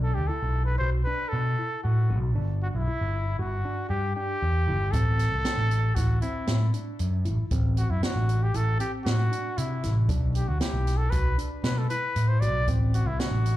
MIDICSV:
0, 0, Header, 1, 5, 480
1, 0, Start_track
1, 0, Tempo, 515907
1, 2194, Time_signature, 5, 2, 24, 8
1, 12624, End_track
2, 0, Start_track
2, 0, Title_t, "Trumpet"
2, 0, Program_c, 0, 56
2, 26, Note_on_c, 0, 69, 71
2, 135, Note_on_c, 0, 67, 76
2, 149, Note_off_c, 0, 69, 0
2, 253, Note_on_c, 0, 69, 79
2, 267, Note_off_c, 0, 67, 0
2, 600, Note_off_c, 0, 69, 0
2, 605, Note_on_c, 0, 71, 75
2, 720, Note_off_c, 0, 71, 0
2, 726, Note_on_c, 0, 72, 90
2, 840, Note_off_c, 0, 72, 0
2, 966, Note_on_c, 0, 71, 83
2, 1198, Note_on_c, 0, 69, 84
2, 1212, Note_off_c, 0, 71, 0
2, 1696, Note_off_c, 0, 69, 0
2, 1708, Note_on_c, 0, 66, 63
2, 2046, Note_off_c, 0, 66, 0
2, 2443, Note_on_c, 0, 66, 68
2, 2495, Note_off_c, 0, 66, 0
2, 2564, Note_on_c, 0, 64, 78
2, 3121, Note_off_c, 0, 64, 0
2, 3156, Note_on_c, 0, 66, 74
2, 3601, Note_off_c, 0, 66, 0
2, 3623, Note_on_c, 0, 67, 84
2, 3850, Note_off_c, 0, 67, 0
2, 3869, Note_on_c, 0, 67, 87
2, 4574, Note_on_c, 0, 69, 102
2, 4588, Note_off_c, 0, 67, 0
2, 5535, Note_on_c, 0, 66, 79
2, 5549, Note_off_c, 0, 69, 0
2, 5772, Note_off_c, 0, 66, 0
2, 5778, Note_on_c, 0, 64, 70
2, 6230, Note_off_c, 0, 64, 0
2, 7236, Note_on_c, 0, 66, 69
2, 7354, Note_on_c, 0, 64, 71
2, 7368, Note_off_c, 0, 66, 0
2, 7473, Note_off_c, 0, 64, 0
2, 7478, Note_on_c, 0, 66, 74
2, 7844, Note_on_c, 0, 67, 78
2, 7858, Note_off_c, 0, 66, 0
2, 7961, Note_on_c, 0, 69, 93
2, 7975, Note_off_c, 0, 67, 0
2, 8178, Note_off_c, 0, 69, 0
2, 8184, Note_on_c, 0, 67, 76
2, 8293, Note_off_c, 0, 67, 0
2, 8417, Note_on_c, 0, 66, 85
2, 8908, Note_on_c, 0, 64, 68
2, 8922, Note_off_c, 0, 66, 0
2, 9270, Note_off_c, 0, 64, 0
2, 9635, Note_on_c, 0, 67, 64
2, 9750, Note_on_c, 0, 66, 72
2, 9764, Note_off_c, 0, 67, 0
2, 9863, Note_off_c, 0, 66, 0
2, 9868, Note_on_c, 0, 67, 73
2, 10207, Note_on_c, 0, 69, 84
2, 10221, Note_off_c, 0, 67, 0
2, 10327, Note_on_c, 0, 71, 82
2, 10341, Note_off_c, 0, 69, 0
2, 10581, Note_off_c, 0, 71, 0
2, 10828, Note_on_c, 0, 71, 79
2, 10961, Note_on_c, 0, 69, 63
2, 10975, Note_off_c, 0, 71, 0
2, 11065, Note_off_c, 0, 69, 0
2, 11070, Note_on_c, 0, 71, 83
2, 11426, Note_on_c, 0, 72, 74
2, 11440, Note_off_c, 0, 71, 0
2, 11539, Note_on_c, 0, 74, 83
2, 11553, Note_off_c, 0, 72, 0
2, 11788, Note_off_c, 0, 74, 0
2, 12037, Note_on_c, 0, 66, 72
2, 12158, Note_on_c, 0, 64, 71
2, 12172, Note_off_c, 0, 66, 0
2, 12278, Note_on_c, 0, 66, 76
2, 12292, Note_off_c, 0, 64, 0
2, 12624, Note_off_c, 0, 66, 0
2, 12624, End_track
3, 0, Start_track
3, 0, Title_t, "Tine electric piano"
3, 0, Program_c, 1, 4
3, 0, Note_on_c, 1, 62, 75
3, 150, Note_off_c, 1, 62, 0
3, 274, Note_on_c, 1, 64, 72
3, 632, Note_off_c, 1, 64, 0
3, 753, Note_on_c, 1, 66, 66
3, 932, Note_off_c, 1, 66, 0
3, 996, Note_on_c, 1, 62, 69
3, 1353, Note_off_c, 1, 62, 0
3, 1478, Note_on_c, 1, 64, 58
3, 1834, Note_off_c, 1, 64, 0
3, 1955, Note_on_c, 1, 66, 67
3, 2133, Note_off_c, 1, 66, 0
3, 2192, Note_on_c, 1, 62, 72
3, 2550, Note_off_c, 1, 62, 0
3, 2677, Note_on_c, 1, 64, 67
3, 3033, Note_off_c, 1, 64, 0
3, 3157, Note_on_c, 1, 66, 63
3, 3334, Note_off_c, 1, 66, 0
3, 3396, Note_on_c, 1, 62, 67
3, 3752, Note_off_c, 1, 62, 0
3, 3873, Note_on_c, 1, 62, 62
3, 4230, Note_off_c, 1, 62, 0
3, 4352, Note_on_c, 1, 64, 67
3, 4531, Note_off_c, 1, 64, 0
3, 4595, Note_on_c, 1, 60, 69
3, 4951, Note_off_c, 1, 60, 0
3, 5077, Note_on_c, 1, 62, 66
3, 5432, Note_off_c, 1, 62, 0
3, 5552, Note_on_c, 1, 64, 62
3, 5730, Note_off_c, 1, 64, 0
3, 5793, Note_on_c, 1, 60, 65
3, 6150, Note_off_c, 1, 60, 0
3, 6268, Note_on_c, 1, 62, 59
3, 6627, Note_off_c, 1, 62, 0
3, 6745, Note_on_c, 1, 64, 64
3, 6926, Note_off_c, 1, 64, 0
3, 6991, Note_on_c, 1, 60, 72
3, 7349, Note_off_c, 1, 60, 0
3, 7467, Note_on_c, 1, 62, 67
3, 7826, Note_off_c, 1, 62, 0
3, 7949, Note_on_c, 1, 64, 62
3, 8129, Note_off_c, 1, 64, 0
3, 8186, Note_on_c, 1, 60, 63
3, 8546, Note_off_c, 1, 60, 0
3, 8667, Note_on_c, 1, 62, 68
3, 9026, Note_off_c, 1, 62, 0
3, 9150, Note_on_c, 1, 64, 63
3, 9330, Note_off_c, 1, 64, 0
3, 9386, Note_on_c, 1, 62, 69
3, 9747, Note_off_c, 1, 62, 0
3, 9872, Note_on_c, 1, 64, 72
3, 10230, Note_off_c, 1, 64, 0
3, 10350, Note_on_c, 1, 66, 71
3, 10530, Note_off_c, 1, 66, 0
3, 10589, Note_on_c, 1, 62, 68
3, 10949, Note_off_c, 1, 62, 0
3, 11077, Note_on_c, 1, 64, 61
3, 11434, Note_off_c, 1, 64, 0
3, 11557, Note_on_c, 1, 66, 65
3, 11736, Note_off_c, 1, 66, 0
3, 11801, Note_on_c, 1, 60, 81
3, 12158, Note_off_c, 1, 60, 0
3, 12279, Note_on_c, 1, 62, 66
3, 12624, Note_off_c, 1, 62, 0
3, 12624, End_track
4, 0, Start_track
4, 0, Title_t, "Picked electric bass"
4, 0, Program_c, 2, 34
4, 0, Note_on_c, 2, 35, 85
4, 103, Note_off_c, 2, 35, 0
4, 158, Note_on_c, 2, 38, 66
4, 259, Note_off_c, 2, 38, 0
4, 395, Note_on_c, 2, 35, 66
4, 700, Note_off_c, 2, 35, 0
4, 757, Note_on_c, 2, 35, 72
4, 960, Note_off_c, 2, 35, 0
4, 1237, Note_on_c, 2, 47, 87
4, 1440, Note_off_c, 2, 47, 0
4, 1719, Note_on_c, 2, 45, 78
4, 1958, Note_on_c, 2, 35, 84
4, 1972, Note_off_c, 2, 45, 0
4, 2190, Note_off_c, 2, 35, 0
4, 2190, Note_on_c, 2, 31, 86
4, 2497, Note_off_c, 2, 31, 0
4, 2555, Note_on_c, 2, 35, 68
4, 2656, Note_off_c, 2, 35, 0
4, 2802, Note_on_c, 2, 31, 68
4, 3103, Note_off_c, 2, 31, 0
4, 3155, Note_on_c, 2, 31, 79
4, 3358, Note_off_c, 2, 31, 0
4, 3629, Note_on_c, 2, 43, 83
4, 3834, Note_off_c, 2, 43, 0
4, 4117, Note_on_c, 2, 40, 73
4, 4350, Note_on_c, 2, 31, 81
4, 4364, Note_off_c, 2, 40, 0
4, 4592, Note_off_c, 2, 31, 0
4, 4592, Note_on_c, 2, 33, 79
4, 4897, Note_off_c, 2, 33, 0
4, 4952, Note_on_c, 2, 36, 69
4, 5053, Note_off_c, 2, 36, 0
4, 5186, Note_on_c, 2, 33, 70
4, 5494, Note_off_c, 2, 33, 0
4, 5552, Note_on_c, 2, 33, 73
4, 5755, Note_off_c, 2, 33, 0
4, 6030, Note_on_c, 2, 45, 76
4, 6234, Note_off_c, 2, 45, 0
4, 6515, Note_on_c, 2, 42, 70
4, 6748, Note_on_c, 2, 33, 72
4, 6762, Note_off_c, 2, 42, 0
4, 6851, Note_off_c, 2, 33, 0
4, 6990, Note_on_c, 2, 33, 85
4, 7296, Note_off_c, 2, 33, 0
4, 7347, Note_on_c, 2, 42, 67
4, 7451, Note_off_c, 2, 42, 0
4, 7589, Note_on_c, 2, 33, 65
4, 7895, Note_off_c, 2, 33, 0
4, 7949, Note_on_c, 2, 33, 78
4, 8154, Note_off_c, 2, 33, 0
4, 8430, Note_on_c, 2, 45, 86
4, 8634, Note_off_c, 2, 45, 0
4, 8915, Note_on_c, 2, 48, 77
4, 9156, Note_on_c, 2, 33, 81
4, 9169, Note_off_c, 2, 48, 0
4, 9389, Note_off_c, 2, 33, 0
4, 9389, Note_on_c, 2, 35, 88
4, 9696, Note_off_c, 2, 35, 0
4, 9747, Note_on_c, 2, 38, 67
4, 9851, Note_off_c, 2, 38, 0
4, 9989, Note_on_c, 2, 35, 66
4, 10296, Note_off_c, 2, 35, 0
4, 10349, Note_on_c, 2, 35, 70
4, 10555, Note_off_c, 2, 35, 0
4, 10827, Note_on_c, 2, 47, 81
4, 11034, Note_off_c, 2, 47, 0
4, 11315, Note_on_c, 2, 45, 75
4, 11553, Note_on_c, 2, 35, 84
4, 11567, Note_off_c, 2, 45, 0
4, 11796, Note_off_c, 2, 35, 0
4, 11796, Note_on_c, 2, 33, 81
4, 12102, Note_off_c, 2, 33, 0
4, 12150, Note_on_c, 2, 36, 72
4, 12255, Note_off_c, 2, 36, 0
4, 12386, Note_on_c, 2, 33, 67
4, 12624, Note_off_c, 2, 33, 0
4, 12624, End_track
5, 0, Start_track
5, 0, Title_t, "Drums"
5, 4589, Note_on_c, 9, 42, 73
5, 4592, Note_on_c, 9, 36, 92
5, 4682, Note_off_c, 9, 42, 0
5, 4685, Note_off_c, 9, 36, 0
5, 4831, Note_on_c, 9, 38, 29
5, 4831, Note_on_c, 9, 42, 54
5, 4924, Note_off_c, 9, 38, 0
5, 4924, Note_off_c, 9, 42, 0
5, 5069, Note_on_c, 9, 38, 90
5, 5069, Note_on_c, 9, 42, 75
5, 5162, Note_off_c, 9, 38, 0
5, 5162, Note_off_c, 9, 42, 0
5, 5311, Note_on_c, 9, 42, 50
5, 5404, Note_off_c, 9, 42, 0
5, 5548, Note_on_c, 9, 38, 28
5, 5548, Note_on_c, 9, 42, 70
5, 5550, Note_on_c, 9, 36, 84
5, 5641, Note_off_c, 9, 38, 0
5, 5641, Note_off_c, 9, 42, 0
5, 5643, Note_off_c, 9, 36, 0
5, 5786, Note_on_c, 9, 42, 51
5, 5879, Note_off_c, 9, 42, 0
5, 6024, Note_on_c, 9, 38, 88
5, 6024, Note_on_c, 9, 42, 68
5, 6117, Note_off_c, 9, 38, 0
5, 6117, Note_off_c, 9, 42, 0
5, 6268, Note_on_c, 9, 42, 50
5, 6361, Note_off_c, 9, 42, 0
5, 6505, Note_on_c, 9, 42, 67
5, 6598, Note_off_c, 9, 42, 0
5, 6747, Note_on_c, 9, 42, 49
5, 6840, Note_off_c, 9, 42, 0
5, 6986, Note_on_c, 9, 42, 65
5, 6989, Note_on_c, 9, 36, 94
5, 7079, Note_off_c, 9, 42, 0
5, 7082, Note_off_c, 9, 36, 0
5, 7229, Note_on_c, 9, 42, 54
5, 7322, Note_off_c, 9, 42, 0
5, 7470, Note_on_c, 9, 38, 93
5, 7470, Note_on_c, 9, 42, 70
5, 7563, Note_off_c, 9, 38, 0
5, 7563, Note_off_c, 9, 42, 0
5, 7712, Note_on_c, 9, 42, 53
5, 7805, Note_off_c, 9, 42, 0
5, 7947, Note_on_c, 9, 42, 71
5, 8040, Note_off_c, 9, 42, 0
5, 8187, Note_on_c, 9, 42, 58
5, 8280, Note_off_c, 9, 42, 0
5, 8432, Note_on_c, 9, 38, 95
5, 8432, Note_on_c, 9, 42, 72
5, 8525, Note_off_c, 9, 38, 0
5, 8525, Note_off_c, 9, 42, 0
5, 8676, Note_on_c, 9, 42, 53
5, 8769, Note_off_c, 9, 42, 0
5, 8911, Note_on_c, 9, 42, 73
5, 9004, Note_off_c, 9, 42, 0
5, 9150, Note_on_c, 9, 38, 27
5, 9150, Note_on_c, 9, 42, 53
5, 9244, Note_off_c, 9, 38, 0
5, 9244, Note_off_c, 9, 42, 0
5, 9386, Note_on_c, 9, 42, 66
5, 9389, Note_on_c, 9, 36, 100
5, 9479, Note_off_c, 9, 42, 0
5, 9482, Note_off_c, 9, 36, 0
5, 9629, Note_on_c, 9, 42, 53
5, 9722, Note_off_c, 9, 42, 0
5, 9868, Note_on_c, 9, 38, 86
5, 9868, Note_on_c, 9, 42, 66
5, 9961, Note_off_c, 9, 38, 0
5, 9961, Note_off_c, 9, 42, 0
5, 10113, Note_on_c, 9, 38, 26
5, 10113, Note_on_c, 9, 42, 49
5, 10206, Note_off_c, 9, 38, 0
5, 10206, Note_off_c, 9, 42, 0
5, 10347, Note_on_c, 9, 42, 68
5, 10351, Note_on_c, 9, 36, 85
5, 10440, Note_off_c, 9, 42, 0
5, 10444, Note_off_c, 9, 36, 0
5, 10594, Note_on_c, 9, 42, 53
5, 10687, Note_off_c, 9, 42, 0
5, 10829, Note_on_c, 9, 38, 91
5, 10829, Note_on_c, 9, 42, 63
5, 10922, Note_off_c, 9, 38, 0
5, 10922, Note_off_c, 9, 42, 0
5, 11072, Note_on_c, 9, 42, 51
5, 11165, Note_off_c, 9, 42, 0
5, 11311, Note_on_c, 9, 42, 69
5, 11404, Note_off_c, 9, 42, 0
5, 11555, Note_on_c, 9, 42, 51
5, 11649, Note_off_c, 9, 42, 0
5, 11792, Note_on_c, 9, 42, 65
5, 11795, Note_on_c, 9, 36, 88
5, 11885, Note_off_c, 9, 42, 0
5, 11888, Note_off_c, 9, 36, 0
5, 12039, Note_on_c, 9, 42, 51
5, 12132, Note_off_c, 9, 42, 0
5, 12278, Note_on_c, 9, 38, 92
5, 12278, Note_on_c, 9, 42, 71
5, 12371, Note_off_c, 9, 38, 0
5, 12371, Note_off_c, 9, 42, 0
5, 12520, Note_on_c, 9, 42, 51
5, 12613, Note_off_c, 9, 42, 0
5, 12624, End_track
0, 0, End_of_file